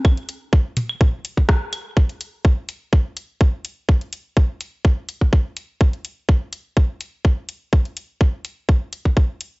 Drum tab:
HH |-xx---x---x---x-|-xx---x---x---x-|-xx---x---x---x-|-xx---x---x---x-|
CL |x------x------x-|----------------|----------------|----------------|
SD |------------r---|----------------|----------------|----------------|
T2 |------o-o-------|----------------|----------------|----------------|
BD |o---o---o--oo---|o---o---o---o---|o---o---o--oo---|o---o---o---o---|

HH |-xx---x---x---x-|
CL |----------------|
SD |----------------|
T2 |----------------|
BD |o---o---o--oo---|